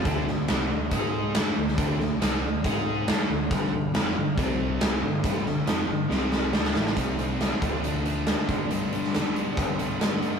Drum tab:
HH |x---x---x---x---|x---x---x---x---|x---x---x---x---|x---x-----------|
SD |--o-o-------o--o|--o-o-------o---|----o-------o---|--o-o---o-o-oooo|
BD |o-------o-------|o-------o-------|o-------o-------|o---------------|

HH |x-x-x-x-x-x-x-x-|x-x-x-x-x-x-x-x-|
SD |----o-------o---|---oo-------o---|
BD |o-----o-------o-|--------o-------|